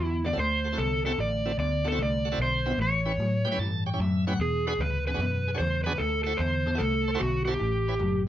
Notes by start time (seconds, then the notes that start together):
Already playing: D3 B3 F#4
0.00 E2
0.04 E4
0.24 D3 B3 F#4 A4 D5
0.33 D2 C4 E4 F#4 A4
0.39 D3 A3 C5
0.64 F#4 A4
0.72 C4 E4 F#4 A4
0.78 C2 D3 B3 A4
1.05 D3 B3 C4 E4 F#4 A4
1.18 A1 D3 A3 D5
1.45 C4 E4 F#4 A4
1.58 D2 D3 B3 D5
1.84 D3 B3 F#4 A4
1.92 C4 E4 F#4 A4
1.98 C2 D3 A3
2.03 D5
2.25 F#4 A4
2.32 C4 E4 F#4 A4
2.38 B1 D3 B3
2.42 C5
2.66 D3 B3 C4 E4 F#4 B4
2.78 A1 A2 E3
2.82 C#5
3.06 C#4 E4 G4 B4
3.18 A2 F#3
3.45 A2 F#3 G4 B4 G5
3.52 C#4 E4 G4 B4
3.58 G2 A2 E3 A5
3.86 G4 C#5 G5
3.94 C#4 E4 G4 C#5
3.99 F#2 A2 F#3 E5
4.27 A2 F#3 C#4 E4 G4 B4 F#5
4.39 E2 B2 G#4
4.67 D4 F#4 G#4 B4
4.79 D2 E2 C#3 B4
5.07 E2 C#3 G#4 B4
5.14 D4 F#4 G#4 B4
5.18 E2 F#2 B2
5.48 G#4 B4
5.54 D4 F#4 G#4 C5 C#5
5.60 E2 C#3
5.84 E2 C#3 D4 F#4 G#4 B4
5.98 D2 D3 A3 A4
6.24 E4 F#4 A4 C5
6.37 E2 D3 B3 C5
6.66 D3 B3 A4 C5
6.75 E4 F#4 A4 C5
6.80 C2 D3 A3
7.08 A4 C5
7.15 E4 F#4 A4 C5
7.19 B1 D3 B3 F#4
7.45 D3 B3 E4 F#4 G4 A4 C5
7.59 A1 A2 E3
7.88 E4 G4 B4 C#5
7.99 F#1 A2 F#3